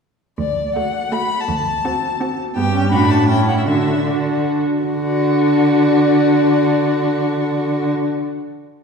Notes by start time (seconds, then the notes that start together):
0.38 D2 D5
0.76 A3 F#4 F#5
1.12 A3 F#4 B5
1.40 A5
1.48 D2
1.85 C4 F#4
2.20 C4 F#4
2.56 G2 B3 G4 G5
2.74 C#4
2.92 A2 D4 F#4 B5
3.11 A5
3.28 C#4 E4 G5
3.48 F#5
3.58 E5
3.67 D3 D4 F#4 E5
4.06 D4 F#4 D5
4.84 D3 D4 F#4 D5